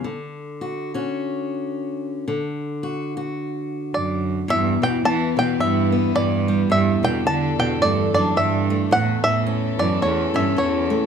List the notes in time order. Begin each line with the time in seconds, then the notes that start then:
0.04 D3
0.61 F#4
0.94 C#4 F#4
2.28 D3
2.83 F#4
3.17 F#4
3.94 F#2 D5
4.48 E2 G2 G3 E4 B4 E5
4.81 B2 E3 G5
5.04 E3 B3 A5
5.37 B2 E3 G5
5.60 G2 G3 E5
5.92 B3
6.15 G2 E3 D5
6.48 G3
6.70 E2 G2 D4 A4 E5
7.03 B2 D3 G5
7.26 D3 D4 A5
7.58 B2 D3 G5
7.81 G2 A3 D5
8.13 F#2 D4 D5
8.36 G2 D3 E5
8.70 A3
8.91 E2 A2 E3 C#4 A4 F#5
9.24 A2 E3 E5
9.46 C#4
9.79 F#2 E3 D5
10.02 E2 A3 C#5
10.34 G2 C#4 E5
10.57 E2 E3 C#5
10.90 A3